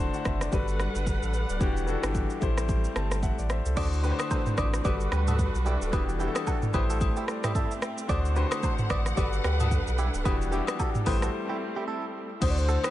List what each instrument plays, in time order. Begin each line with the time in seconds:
Already playing: string section D3 A3 C4 E4 F#4, grand piano D3 D4 F#4 C5
0.00 grand piano A5
0.14 grand piano F#5, shaker
0.25 sub bass F#1, grand piano E5, kick, cross-stick, shaker
0.41 grand piano D5, cross-stick, shaker
0.51 sub bass G1, grand piano G3 F#4 A4 B4, string section G3 D4 A4 B4 F#5, kick, shaker
0.68 shaker
0.80 cross-stick, shaker
0.95 sub bass G1, shaker
1.07 kick, shaker
1.22 sub bass A1, grand piano A4, shaker
1.33 grand piano B4, shaker
1.49 sub bass D1, grand piano D5, shaker
1.60 sub bass E1, grand piano E3 D4 F#4 G4, string section E3 G3 B3 D4, kick, shaker
1.77 shaker
1.87 grand piano E3 D4 F#4 A4, shaker
2.02 sub bass G1, grand piano E3 D4 F#4 G4, cross-stick, shaker
2.15 kick, shaker
2.30 shaker
2.40 sub bass A1, grand piano A3 E4 G4 C5, string section A3 C4, kick, shaker
2.58 cross-stick, shaker
2.69 kick, shaker
2.84 shaker
2.96 sub bass G1, grand piano A5, cross-stick, shaker
3.11 cross-stick, shaker
3.23 grand piano E5 F#5, kick, shaker
3.38 sub bass A1, grand piano D5, shaker
3.50 grand piano C5 E5, cross-stick, shaker
3.65 sub bass C2, grand piano A4, shaker
3.75 sub bass D2, grand piano D3 D4 F#4 C5, string section D3 A3 C4 E4 F#4, clean electric guitar A4 D5, kick, crash, high agogo, shaker
3.93 shaker
4.03 grand piano D3 D4 F#4 B4, clean electric guitar G4 B4, shaker
4.12 grand piano C5
4.19 cross-stick, high agogo, shaker
4.31 clean electric guitar A4 C5, kick, low woodblock, shaker
4.46 mid tom, shaker
4.57 sub bass A1, clean electric guitar B4 D5, kick, cross-stick, high agogo, shaker
4.74 cross-stick, shaker
4.84 sub bass G1, grand piano G3 F#4 A4 B4, string section G3 D4 A4 B4, clean electric guitar B4 D5, kick, high agogo, shaker
5.00 shaker
5.12 sub bass D2, clean electric guitar G4 B4, cross-stick, shaker
5.28 clean electric guitar F#4 A4, mid tom, high agogo, shaker
5.39 grand piano B4, kick, shaker
5.54 sub bass B1, shaker
5.66 clean electric guitar E4 G4, grand piano D5, shaker
5.81 sub bass D1, grand piano A4, shaker
5.92 sub bass E1, grand piano E3 D4 F#4 G4, string section E3 G3 B3, clean electric guitar G4 B4, kick, high agogo, shaker
6.09 shaker
6.19 grand piano E3 D4 F#4 G4, clean electric guitar E4 G4, shaker
6.28 grand piano A4
6.35 cross-stick, high agogo, shaker
6.47 clean electric guitar F#4 A4, kick, low woodblock, shaker
6.62 mid tom, shaker
6.73 sub bass A1, grand piano A3 E4 G4 C5, string section A3 C4, clean electric guitar G4 B4, kick, high agogo, shaker
6.90 clean electric guitar F#4 A4, shaker
7.01 kick, high agogo, shaker
7.16 clean electric guitar E4 G4, shaker
7.28 grand piano D5, cross-stick, shaker
7.44 clean electric guitar E4 G4, cross-stick, mid tom, high agogo, shaker
7.55 clean electric guitar E4 A4, grand piano E5, kick, shaker
7.71 shaker
7.82 grand piano G5, cross-stick, shaker
7.98 shaker
8.08 sub bass D2, grand piano D3 D4 F#4 C5, string section D3 A3 E4 F#5, clean electric guitar A4 D5, kick, high agogo, shaker
8.25 shaker
8.35 grand piano D3 D4 F#4 C5, clean electric guitar G4 B4, shaker
8.51 cross-stick, high agogo, shaker
8.63 clean electric guitar A4 C5, kick, low woodblock, shaker
8.78 mid tom, shaker
8.90 sub bass A1, clean electric guitar B4 D5, kick, cross-stick, high agogo, shaker
9.06 cross-stick, shaker
9.16 sub bass G1, grand piano G3 F#4 A4 B4, string section G3 D4 A4 B4, clean electric guitar B4 D5, kick, high agogo, shaker
9.33 shaker
9.44 sub bass D2, clean electric guitar G4 B4, cross-stick, shaker
9.60 clean electric guitar F#4 A4, mid tom, high agogo, shaker
9.71 kick, shaker
9.87 sub bass B1, shaker
9.98 clean electric guitar E4 G4, shaker
10.14 sub bass D1, shaker
10.24 sub bass E1, grand piano E3 D4 F#4 G4, string section E3 G3 B3, clean electric guitar G4 B4, kick, high agogo, shaker
10.42 shaker
10.51 grand piano E3 D4 F#4 G4, clean electric guitar E4 G4, shaker
10.67 cross-stick, high agogo, shaker
10.79 clean electric guitar F#4 A4, kick, low woodblock, shaker
10.95 mid tom, shaker
11.05 sub bass A1, grand piano A3 E4 G4 C5, string section A3 C4, clean electric guitar G4 B4, kick, open hi-hat, high agogo, shaker
11.22 clean electric guitar F#4 A4, cross-stick, shaker
11.49 clean electric guitar E4 G4
11.76 clean electric guitar E4 G4
11.88 clean electric guitar E4 A4
12.40 sub bass D2, grand piano D3 D4 F#4 C5, string section D3 A3 C4 E4 F#5, soft synth lead C5, kick, crash, high agogo, shaker
12.50 soft synth lead D5
12.58 soft synth lead C5, shaker
12.68 clean electric guitar F#4 A4, shaker
12.84 clean electric guitar G4 B4, cross-stick, high agogo, shaker